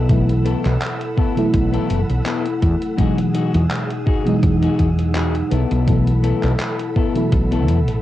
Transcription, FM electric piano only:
0.08 1.32 B2 medium
0.08 1.32 E3 medium
0.08 1.33 F#3 medium
0.08 1.33 A3 medium
0.08 1.34 E4 medium
1.36 2.94 B2 medium
1.36 2.94 E3 medium
1.36 2.95 F#3 medium
1.36 2.95 A3 medium
1.36 2.95 E4 medium
2.97 4.21 B2 medium
2.97 4.22 E3 medium
2.97 4.22 F#3 medium
2.97 4.22 G#3 medium
2.97 4.23 D#4 medium
4.25 5.49 B2 loud
4.25 5.49 E3 medium
4.25 5.50 F#3 medium
4.25 5.50 G#3 medium
4.25 5.50 D#4 loud
5.86 7.10 B2 medium
5.86 7.11 E3 medium
5.86 7.11 F#3 medium
5.86 7.11 A3 medium
5.86 7.12 E4 medium
7.14 8.02 B2 medium
7.14 8.02 E3 medium
7.14 8.02 F#3 medium
7.14 8.02 A3 medium
7.14 8.02 E4 medium

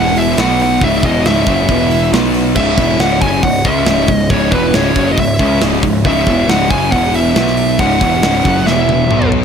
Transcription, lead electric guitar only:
0.00 0.18 F#5 loud
0.18 0.37 E5 medium
0.40 0.61 F#5 loud
0.62 0.84 F#5 loud
0.84 1.05 E5 loud
1.06 1.27 D#5 medium
1.27 2.09 E5 medium
2.56 3.01 E5 loud
3.00 3.21 F#5 loud
3.22 3.42 G#5 loud
3.44 3.66 F#5 loud
3.65 4.13 E5 loud
4.13 4.30 D#5 loud
4.31 4.53 C#5 loud
4.52 4.72 B4 medium
4.75 5.09 C#5 medium
5.12 5.19 D#5 medium
5.20 5.60 E5 medium
6.06 6.51 E5 loud
6.49 6.70 F#5 loud
6.71 6.92 G#5 loud
6.92 7.15 F#5 medium
7.15 7.82 E5 medium
7.80 8.70 F#5 loud
8.67 9.29 E5 medium

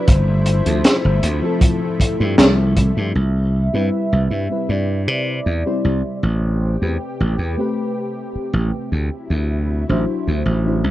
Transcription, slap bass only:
0.08 0.60 G1 medium
0.66 0.81 D2 loud
1.05 1.19 G1 medium
1.23 1.39 D2 medium
2.20 2.35 G2 loud
2.38 2.91 C2 medium
2.97 3.12 G2 loud
3.15 3.68 C2 medium
3.74 3.89 G2 medium
4.12 4.27 C2 medium
4.31 4.47 G2 medium
4.69 5.08 G2 medium
5.08 5.39 C3 medium
5.46 5.63 E2 medium
5.84 6.01 C2 medium
6.23 6.76 A1 medium
6.82 6.96 E2 medium
7.20 7.35 A1 medium
7.38 7.55 E2 medium
8.35 muted slap bass stroke soft
8.54 8.70 A1 loud
8.92 9.09 D2 medium
9.30 9.83 D2 medium
9.89 10.04 A1 medium
10.28 10.42 D2 medium
10.46 10.84 A1 medium
10.84 10.91 C2 medium

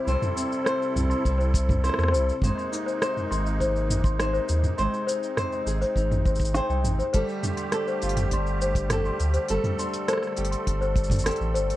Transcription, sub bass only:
0.07 0.16 C2 medium
0.96 1.14 C2 medium
1.25 1.53 C2 loud
1.54 1.89 C2 loud
1.98 2.15 E2 medium
2.13 2.31 C2 medium
2.42 2.52 G#1 loud
3.31 4.40 G#1 medium
4.49 4.67 D#2 loud
4.79 4.88 G#1 medium
5.66 5.84 G#1 medium
5.96 6.25 G#1 loud
6.25 6.60 G#1 loud
6.69 6.85 C2 medium
6.84 7.02 G#1 medium
7.14 7.23 G1 loud
8.03 9.11 G1 medium
9.20 9.38 D2 loud
9.50 9.58 G1 loud
10.38 10.56 G1 medium
10.67 10.95 G1 loud
10.95 11.31 G1 loud
11.40 11.56 A1 medium
11.55 11.73 G1 medium

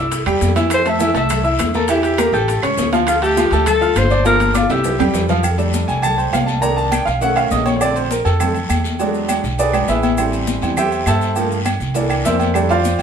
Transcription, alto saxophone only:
0.74 0.86 C5 loud
0.89 1.15 E5 loud
1.17 1.57 E5 loud
1.76 1.89 A4 medium
1.90 2.04 G4 medium
2.04 2.32 G4 medium
2.33 2.61 A4 medium
3.08 3.22 F4 medium
3.22 3.64 G4 medium
3.67 3.99 A4 loud
3.98 4.26 C5 loud
4.26 4.54 A#4 loud
4.57 4.73 F4 medium
4.72 5.15 G4 medium

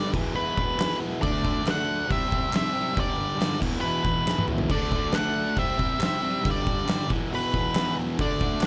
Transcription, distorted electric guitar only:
0.00 0.11 G2 medium
0.00 0.12 D3 medium
0.00 0.13 G3 medium
0.14 0.34 B2 medium
0.14 0.36 E3 medium
0.19 0.33 E2 medium
0.34 0.77 E2 loud
0.34 0.59 B2 medium
0.34 0.55 E3 loud
0.56 0.80 E3 medium
0.60 0.79 B2 medium
0.78 1.20 E2 medium
0.78 1.02 B2 medium
0.78 0.98 E3 medium
0.99 1.20 B2 medium
0.99 1.20 E3 medium
1.21 1.62 D3 loud
1.21 1.45 A3 medium
1.25 1.42 D4 loud
1.43 1.65 A3 medium
1.43 1.66 D4 medium
1.63 2.06 D3 medium
1.63 2.08 A3 medium
1.67 2.08 D4 medium
2.07 2.48 C3 loud
2.07 2.32 G3 medium
2.07 2.27 C4 loud
2.29 2.53 C4 medium
2.33 2.52 G3 medium
2.49 2.93 C3 medium
2.49 2.75 G3 medium
2.54 2.71 C4 loud
2.73 2.95 G3 medium
2.73 2.94 C4 medium
2.92 3.34 G2 loud
2.92 3.17 D3 loud
2.96 3.13 G3 loud
3.14 3.36 D3 medium
3.14 3.38 G3 medium
3.35 3.58 G2 medium
3.35 3.59 D3 medium
3.35 3.59 G3 medium
3.60 3.80 E2 medium
3.60 3.82 B2 medium
3.60 3.83 E3 medium
3.82 4.26 E2 medium
3.82 4.06 B2 medium
3.82 4.03 E3 loud
4.04 4.28 B2 medium
4.04 4.30 E3 medium
4.27 4.69 E2 medium
4.27 4.52 B2 medium
4.27 4.48 E3 medium
4.49 4.71 B2 medium
4.49 4.69 E3 medium
4.71 5.13 D3 loud
4.71 4.94 A3 loud
4.71 4.91 D4 loud
4.92 5.15 A3 medium
4.92 5.17 D4 medium
5.14 5.56 D3 medium
5.14 5.57 A3 medium
5.14 5.58 D4 medium
5.58 5.99 C3 medium
5.58 5.81 G3 loud
5.58 5.77 C4 loud
5.78 6.00 G3 medium
5.78 6.02 C4 medium
6.00 6.42 C3 medium
6.00 6.24 G3 medium
6.00 6.21 C4 medium
6.22 6.44 G3 medium
6.22 6.43 C4 medium
6.41 6.85 G2 medium
6.41 6.67 D3 loud
6.46 6.63 G3 loud
6.64 6.88 D3 medium
6.64 6.89 G3 medium
6.86 7.07 G2 medium
6.86 7.09 D3 medium
6.86 7.08 G3 medium
7.09 7.29 E2 medium
7.09 7.31 B2 medium
7.09 7.33 E3 medium
7.30 7.73 E2 loud
7.30 7.54 B2 loud
7.30 7.51 E3 loud
7.52 7.75 B2 medium
7.52 7.77 E3 medium
7.74 8.17 E2 medium
7.74 7.99 B2 medium
7.74 7.95 E3 medium
7.96 8.17 E3 medium
8.00 8.18 B2 medium
8.18 8.62 D3 loud
8.18 8.44 A3 loud
8.18 8.41 D4 loud
8.42 8.64 A3 medium
8.42 8.65 D4 medium
8.63 8.67 D3 medium

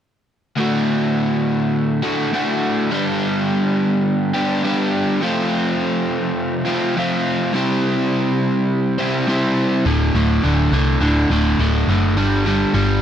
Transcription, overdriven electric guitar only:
0.56 2.00 D2 medium
0.56 2.01 A2 medium
0.56 2.01 D3 medium
0.56 2.02 A3 medium
0.56 2.01 F#4 medium
2.02 2.31 D2 medium
2.02 2.31 A2 medium
2.02 2.31 D3 medium
2.02 2.30 A3 medium
2.02 2.30 F#4 medium
2.32 2.88 D2 medium
2.32 2.89 A2 medium
2.32 2.89 D3 medium
2.32 2.90 A3 medium
2.32 2.90 F#4 medium
2.90 4.34 G2 medium
2.90 4.34 D3 medium
2.90 4.34 G3 medium
2.90 4.34 B3 medium
2.90 4.34 D4 medium
2.90 4.33 G4 medium
4.34 4.62 G2 medium
4.34 4.63 D3 medium
4.34 4.63 G3 medium
4.34 4.63 B3 medium
4.34 4.62 D4 medium
4.34 4.62 G4 medium
4.63 5.20 G2 medium
4.63 5.21 D3 medium
4.63 5.21 G3 medium
4.63 5.21 B3 medium
4.63 5.22 D4 medium
4.63 5.22 G4 medium
5.21 6.65 F2 medium
5.21 6.65 C3 medium
5.21 6.66 F3 medium
5.21 6.66 A3 medium
5.21 6.65 C4 medium
5.21 6.64 F4 medium
6.66 6.95 F2 medium
6.66 6.95 C3 medium
6.66 6.95 F3 medium
6.66 6.95 A3 medium
6.66 6.94 C4 medium
6.66 6.94 F4 medium
6.96 7.52 F2 medium
6.96 7.52 C3 medium
6.96 7.53 F3 medium
6.96 7.54 A3 medium
6.96 7.53 C4 medium
6.96 7.54 F4 medium
7.53 8.97 C3 medium
7.53 8.97 G3 medium
7.53 8.97 C4 medium
7.53 8.98 E4 medium
7.53 8.98 G4 medium
7.53 8.97 C5 medium
8.98 9.26 C3 medium
8.98 9.26 G3 medium
8.98 9.27 C4 medium
8.98 9.27 E4 medium
8.98 9.26 G4 medium
8.98 9.26 C5 medium
9.27 9.84 C3 medium
9.27 9.84 G3 medium
9.27 9.84 C4 medium
9.27 9.85 E4 medium
9.27 9.85 G4 medium
9.27 9.85 C5 medium
9.85 10.13 D2 medium
9.85 10.14 A2 medium
9.85 10.14 D3 medium
10.15 10.42 D2 medium
10.15 10.42 A2 medium
10.15 10.43 D3 medium
10.43 10.71 D2 medium
10.43 10.72 A2 medium
10.43 10.72 D3 medium
10.72 11.00 D2 medium
10.72 11.00 A2 medium
10.72 11.01 D3 medium
11.01 11.30 D2 medium
11.01 11.30 A2 medium
11.01 11.31 D3 loud
11.31 11.58 D2 medium
11.31 11.59 A2 medium
11.31 11.59 D3 loud
11.59 11.87 D2 medium
11.59 11.88 A2 medium
11.59 11.89 D3 medium
11.89 12.16 D2 medium
11.89 12.16 A2 medium
11.89 12.16 D3 medium
12.17 12.45 G2 medium
12.17 12.45 D3 loud
12.17 12.46 G3 medium
12.46 12.73 G2 medium
12.46 12.73 D3 medium
12.46 12.74 G3 medium
12.74 13.02 G2 medium
12.74 13.02 D3 medium
12.74 13.02 G3 medium

